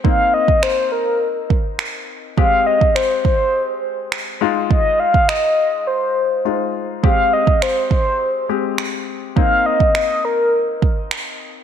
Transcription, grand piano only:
X:1
M:4/4
L:1/8
Q:1/4=103
K:Ab
V:1 name="Grand piano"
[B,CE]8 | [A,CG]6- [A,CG] [A,EF]- | [A,EF]6 [A,EF]2 | [A,CG]4- [A,CG] [A,CG]3 |
[B,CE]8 |]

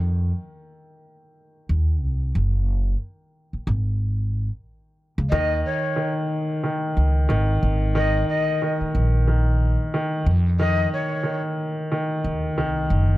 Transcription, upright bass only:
X:1
M:4/4
L:1/16
Q:"Swing 16ths" 1/4=91
K:Fphr
V:1 name="Upright bass" clef=bass
F,,2 z8 E,,2 C,,2 G,,,2- | G,,,2 z4 A,,,4- A,,, z4 D,, | E,,2 z8 D,,2 A,,,2 A,,,2- | A,,,2 z4 B,,,4- B,,, z3 F,,2- |
F,,2 z8 E,,2 C,,2 G,,,2 |]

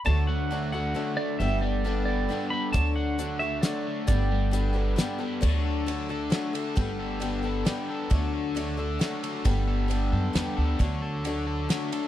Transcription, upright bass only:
X:1
M:3/4
L:1/8
Q:1/4=134
K:D
V:1 name="Upright bass" clef=bass
D,,4 z2 | G,,,4 z2 | D,,4 z2 | G,,,4 z2 |
D,,4 z2 | G,,,4 z2 | D,,4 z2 | G,,,3 F,, E,, D,, |
D,,4 z2 |]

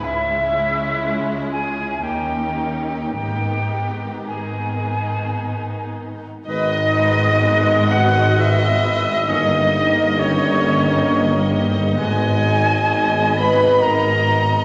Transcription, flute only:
X:1
M:3/4
L:1/16
Q:1/4=64
K:G#m
V:1 name="Flute"
e6 g2 =g3 g | =g3 z ^g6 z2 | d6 f2 e4 | d4 c6 z2 |
g6 b2 a4 |]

